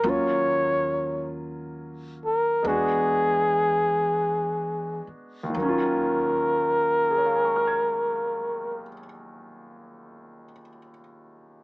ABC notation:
X:1
M:4/4
L:1/8
Q:"Swing" 1/4=39
K:Ebm
V:1 name="Flugelhorn"
d2 z B ^G3 z | B8 |]
V:2 name="Grand piano"
z8 | z2 [Adfad'f'a']6 |]
V:3 name="Grand piano"
[G,B,DF]4 [^G,=B,=D_G]4 | [E,,E,G,DF]8 |]
V:4 name="Upright bass" clef=bass
E,,4 =E,,3 z | E,,8 |]